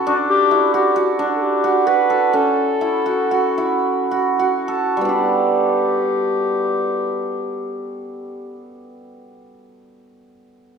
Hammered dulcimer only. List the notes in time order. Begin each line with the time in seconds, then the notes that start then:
Already playing: C#4 E4 F#4 A4
0.07 D4
0.51 E4
0.74 F#4
0.96 F#4
1.19 D4
1.64 F#4
1.87 F#4
2.10 A4
2.33 C#4
2.81 E4
3.06 F#4
3.31 F#4
3.58 E4
4.11 F#4
4.39 F#4
4.68 A4
4.97 G3
5.01 B3 D4
5.09 G4